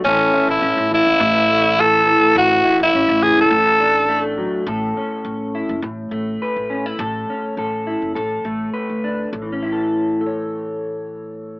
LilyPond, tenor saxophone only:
\new Staff \with { instrumentName = "Tenor saxophone" } { \time 4/4 \key a \major \tempo 4 = 103 cis'8. e'8. e'4. a'4 | fis'8. e'8. gis'16 a'4. r8. | r1 | r1 |
r1 | }